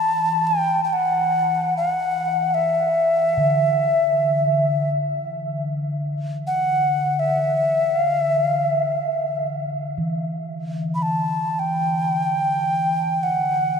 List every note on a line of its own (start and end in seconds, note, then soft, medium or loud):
0.00 0.91 E3 medium
0.00 0.48 A5 medium
0.47 0.83 G5 medium
0.84 0.95 G5 medium
0.93 1.77 F#5 medium
1.77 2.56 F#5 medium
2.54 4.90 E5 medium
3.37 10.31 D3 medium
6.47 7.21 F#5 loud
7.19 8.00 E5 medium
8.00 8.21 F5 medium
8.21 8.45 E5 medium
8.45 8.67 F5 medium
8.67 9.47 E5 medium
9.98 13.80 E3 medium
10.95 11.04 B5 soft
11.02 11.61 A5 medium
11.59 13.25 G5 medium
13.23 13.80 F#5 medium